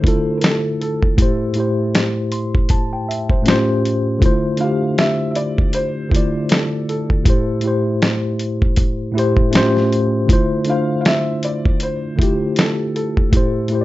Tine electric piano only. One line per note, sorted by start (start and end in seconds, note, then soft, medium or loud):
0.00 1.20 D3 medium
0.00 0.03 A3 medium
0.00 1.00 A3 medium
0.00 1.20 D4 medium
0.00 0.05 E4 medium
0.00 0.06 F4 medium
0.00 1.19 C5 medium
0.05 1.01 E4 medium
0.05 1.02 F4 medium
0.05 1.02 A4 medium
1.15 1.49 A2 medium
1.15 1.50 A3 medium
1.15 1.51 E4 medium
1.20 1.51 G4 medium
1.20 1.52 C5 medium
1.53 2.81 A2 medium
1.53 2.82 A3 medium
1.53 2.82 E4 medium
1.58 2.83 G4 medium
1.58 2.34 C5 medium
2.32 2.68 C6 medium
2.71 2.91 A5 medium
2.93 3.07 G5 medium
3.09 3.30 E5 medium
3.31 3.48 C5 medium
3.42 4.09 A2 medium
3.42 4.09 A3 medium
3.42 4.10 C#4 medium
3.47 4.11 F4 medium
3.47 4.12 G4 medium
3.47 4.12 C5 loud
4.19 4.53 D3 medium
4.19 4.53 A3 medium
4.19 4.54 E4 medium
4.24 4.55 F4 medium
4.24 4.56 C5 medium
4.57 5.85 D3 medium
4.57 5.85 A3 medium
4.57 5.86 D4 medium
4.62 5.87 F4 medium
4.62 5.88 G4 medium
6.09 7.07 D3 medium
6.09 7.08 A3 medium
6.09 7.08 E4 medium
6.14 7.09 F4 medium
6.14 7.10 D5 medium
7.23 7.56 A2 medium
7.23 7.57 A3 medium
7.23 7.58 E4 medium
7.28 7.59 G4 medium
7.28 7.60 C5 medium
7.61 8.88 A2 medium
7.61 8.89 A3 medium
7.61 8.90 E4 medium
7.66 8.91 G4 medium
7.66 8.92 C5 medium
9.12 9.49 A2 medium
9.12 9.50 A3 medium
9.12 9.53 E4 medium
9.17 9.54 G4 medium
9.17 9.55 C5 medium
9.50 10.16 A2 medium
9.50 10.17 A3 medium
9.50 10.18 C#4 medium
9.50 10.18 F4 medium
9.55 10.19 G4 medium
9.55 10.20 C5 loud
10.26 10.60 D3 medium
10.26 10.61 A3 medium
10.26 10.62 E4 medium
10.32 10.63 F4 medium
10.32 10.63 C5 medium
10.64 11.92 D3 medium
10.64 11.93 A3 medium
10.64 11.94 D4 medium
10.70 11.95 F4 medium
10.70 11.96 C5 medium
12.16 13.14 D3 medium
12.16 13.15 A3 medium
12.16 13.16 E4 medium
12.21 13.16 F4 medium
12.21 13.17 G4 medium
13.30 13.64 A2 medium
13.30 13.65 A3 medium
13.30 13.65 E4 medium
13.35 13.66 G4 medium
13.35 13.67 C5 medium
13.68 13.85 A2 medium
13.68 13.85 A3 medium
13.68 13.85 E4 medium
13.73 13.85 G4 medium
13.73 13.81 C5 medium
13.81 13.85 D5 medium